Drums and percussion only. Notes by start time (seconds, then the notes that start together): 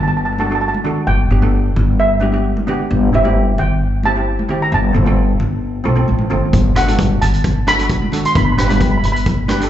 0.38 high conga
0.74 high conga
0.85 low conga
1.42 high conga
1.76 low conga
2.21 high conga
2.57 high conga
2.68 low conga
3.25 high conga
3.58 low conga
4.03 high conga
4.39 high conga
4.49 low conga
4.94 low conga
5.06 high conga
5.40 low conga
5.86 high conga
6.08 high conga
6.19 high conga
6.31 low conga
6.53 kick, closed hi-hat
6.76 cross-stick, closed hi-hat
6.87 closed hi-hat, high conga
6.99 kick, closed hi-hat
7.22 closed hi-hat, low conga
7.33 closed hi-hat
7.44 kick, closed hi-hat
7.67 cross-stick, closed hi-hat, high conga
7.79 closed hi-hat
7.90 kick, closed hi-hat
8.02 high conga
8.12 closed hi-hat, low conga
8.25 closed hi-hat
8.35 kick, closed hi-hat
8.58 cross-stick, closed hi-hat
8.69 closed hi-hat, high conga
8.81 kick, closed hi-hat
9.03 closed hi-hat
9.16 closed hi-hat
9.26 kick, closed hi-hat
9.48 cross-stick, closed hi-hat, high conga
9.61 closed hi-hat